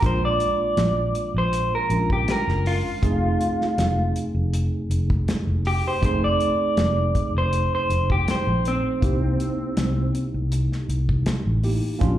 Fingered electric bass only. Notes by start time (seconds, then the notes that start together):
0.03 A#1
0.77 A#1
1.34 A#1
1.90 A#1
2.47 F#1
3.03 F1
3.78 F1
4.34 F1
4.90 F1
5.47 F1
6.02 F1
6.77 F1
7.35 F1
7.90 F1
8.47 A#1
9.03 C2
9.77 C2
10.34 C2
10.89 C2
11.46 A1
12.02 A#1